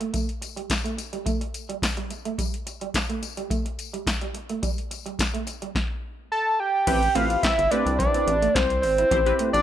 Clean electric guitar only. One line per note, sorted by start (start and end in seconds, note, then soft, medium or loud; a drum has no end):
0.00 0.10 A3 medium
0.14 0.24 A3 medium
0.42 muted clean electric guitar stroke soft
0.56 0.66 G3 medium
0.84 0.94 A3 medium
0.98 muted clean electric guitar stroke soft
1.13 1.22 G3 medium
1.26 1.36 A3 medium
1.41 muted clean electric guitar stroke soft
1.69 1.79 G3 medium
1.97 2.07 G3 medium
2.11 muted clean electric guitar stroke soft
2.25 2.35 A3 medium
2.39 2.49 G3 medium
2.67 muted clean electric guitar stroke soft
2.82 2.91 G3 medium
3.09 3.19 A3 medium
3.22 muted clean electric guitar stroke soft
3.37 3.47 G3 medium
3.50 3.61 A3 medium
3.65 muted clean electric guitar stroke soft
3.93 4.03 G3 medium
4.22 4.31 G3 medium
4.35 muted clean electric guitar stroke soft
4.50 4.59 A3 medium
4.63 4.73 G3 medium
4.91 muted clean electric guitar stroke soft
5.06 5.15 G3 medium
5.34 5.43 A3 medium
5.47 muted clean electric guitar stroke soft
5.62 5.71 G3 medium
6.87 6.98 C4 medium
7.15 7.26 A3 medium
7.30 muted clean electric guitar stroke soft
7.71 7.82 A3 medium
8.14 8.24 C4 medium
8.27 muted clean electric guitar stroke soft
8.42 8.51 A3 medium
8.55 8.66 C4 medium
8.84 muted clean electric guitar stroke soft
8.98 9.08 E4 medium
9.11 9.22 C4 medium
9.40 9.50 A3 medium